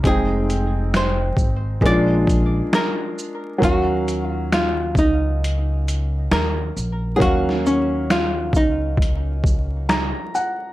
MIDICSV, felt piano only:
0, 0, Header, 1, 2, 480
1, 0, Start_track
1, 0, Key_signature, -6, "minor"
1, 0, Tempo, 895522
1, 20, Time_signature, 4, 2, 24, 8
1, 5751, End_track
2, 0, Start_track
2, 0, Title_t, "Felt piano"
2, 0, Program_c, 0, 0
2, 0, Control_c, 0, 64, 127
2, 18, Note_on_c, 0, 56, 60
2, 26, Control_c, 0, 64, 0
2, 27, Note_on_c, 0, 60, 56
2, 36, Note_on_c, 0, 63, 56
2, 44, Note_on_c, 0, 79, 72
2, 120, Control_c, 0, 64, 127
2, 960, Note_off_c, 0, 56, 0
2, 964, Note_off_c, 0, 60, 0
2, 969, Note_off_c, 0, 63, 0
2, 973, Note_off_c, 0, 79, 0
2, 973, Note_on_c, 0, 56, 66
2, 983, Note_on_c, 0, 58, 59
2, 986, Control_c, 0, 64, 0
2, 993, Note_on_c, 0, 61, 54
2, 1001, Note_on_c, 0, 65, 67
2, 1026, Note_on_c, 0, 62, 61
2, 1029, Note_off_c, 0, 61, 0
2, 1090, Control_c, 0, 64, 127
2, 1917, Note_off_c, 0, 56, 0
2, 1920, Note_on_c, 0, 54, 67
2, 1921, Note_off_c, 0, 58, 0
2, 1929, Note_on_c, 0, 58, 56
2, 1931, Note_off_c, 0, 65, 0
2, 1939, Note_on_c, 0, 61, 51
2, 1944, Note_off_c, 0, 62, 0
2, 1946, Control_c, 0, 64, 0
2, 1948, Note_on_c, 0, 77, 67
2, 2033, Control_c, 0, 64, 127
2, 3829, Note_off_c, 0, 54, 0
2, 3833, Note_off_c, 0, 58, 0
2, 3838, Note_off_c, 0, 61, 0
2, 3840, Note_on_c, 0, 54, 53
2, 3843, Note_off_c, 0, 77, 0
2, 3850, Note_on_c, 0, 58, 57
2, 3859, Note_on_c, 0, 61, 63
2, 3868, Note_on_c, 0, 77, 73
2, 5301, Note_on_c, 0, 82, 71
2, 5524, Note_off_c, 0, 82, 0
2, 5547, Note_on_c, 0, 78, 64
2, 5749, Note_off_c, 0, 54, 0
2, 5751, Note_off_c, 0, 58, 0
2, 5751, Note_off_c, 0, 61, 0
2, 5751, Note_off_c, 0, 77, 0
2, 5751, Note_off_c, 0, 78, 0
2, 5751, End_track
0, 0, End_of_file